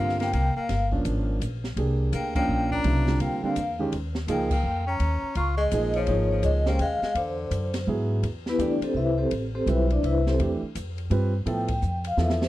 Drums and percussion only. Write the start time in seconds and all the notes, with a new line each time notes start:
0.09 snare
0.20 snare, ride
0.33 ride
0.69 snare, ride
0.92 kick
1.05 hi-hat pedal, ride
1.41 hi-hat pedal, ride
1.64 snare
1.77 ride
2.13 hi-hat pedal, ride
2.35 kick, crash
2.71 kick
2.84 ride
3.07 snare
3.20 ride
3.56 hi-hat pedal, ride
3.92 ride
4.15 snare
4.28 hi-hat pedal, ride
4.51 kick, crash
5.00 ride
5.35 ride
5.71 hi-hat pedal, ride
5.93 ride
6.07 ride
6.43 hi-hat pedal, ride
6.66 snare
6.79 ride
7.02 snare
7.15 ride
7.51 hi-hat pedal, ride
7.74 snare, ride
8.23 ride
8.46 snare
8.59 hi-hat pedal, ride
8.82 ride
9.31 ride
9.67 hi-hat pedal, ride
9.90 ride
10.04 ride
10.27 snare
10.40 ride
10.75 hi-hat pedal, ride
10.98 ride
11.11 ride
11.47 ride
11.68 kick, ride
11.82 hi-hat pedal
12.04 ride
12.18 snare
12.30 snare
12.42 snare